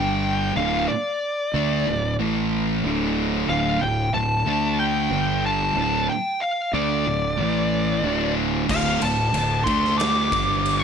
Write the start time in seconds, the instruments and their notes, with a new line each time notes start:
Already playing: fingered electric bass G1, distorted electric guitar G2 D3 G3, lead electric guitar G5
0.56 fingered electric bass D1, distorted electric guitar D2 A2 D3, lead electric guitar F5
0.89 lead electric guitar D5
1.54 fingered electric bass D2, distorted electric guitar D3 A3 D4
1.87 fingered electric bass D1, distorted electric guitar D2 A2
2.19 fingered electric bass A1, distorted electric guitar A2 E3 A3
2.84 fingered electric bass D1, distorted electric guitar D2 A2 D3
3.49 fingered electric bass D1, distorted electric guitar D2 A2 D3, lead electric guitar F5
3.81 fingered electric bass D1, distorted electric guitar D2 A2, lead electric guitar G5
4.14 fingered electric bass D1, distorted electric guitar D2 A2, lead electric guitar A5
4.46 fingered electric bass D2, distorted electric guitar D3 A3 D4
4.79 lead electric guitar G5
5.10 fingered electric bass G1, distorted electric guitar G2 D3 G3
5.46 lead electric guitar A5
5.75 fingered electric bass D1, distorted electric guitar D2 A2 D3
6.09 lead electric guitar G5
6.41 lead electric guitar F5
6.73 fingered electric bass D2, distorted electric guitar D3 A3 D4, lead electric guitar D5
7.06 fingered electric bass D1, distorted electric guitar D2 A2
7.38 fingered electric bass A1, distorted electric guitar A2 E3 A3
8.03 fingered electric bass D1, distorted electric guitar D2 A2 D3
8.68 fingered electric bass D1, distorted electric guitar D2 A2 D3, lead electric guitar F5, kick, crash
9.01 fingered electric bass D1, distorted electric guitar D2 A2, lead electric guitar A5, ride
9.34 fingered electric bass D1, distorted electric guitar D2 A2, ride
9.64 fingered electric bass D2, distorted electric guitar D3 A3, lead electric guitar C6, kick, ride
9.68 distorted electric guitar D4
9.85 snare
9.98 lead electric guitar D6, snare, ride
10.32 fingered electric bass G1, distorted electric guitar G2 D3 G3, kick, ride
10.66 ride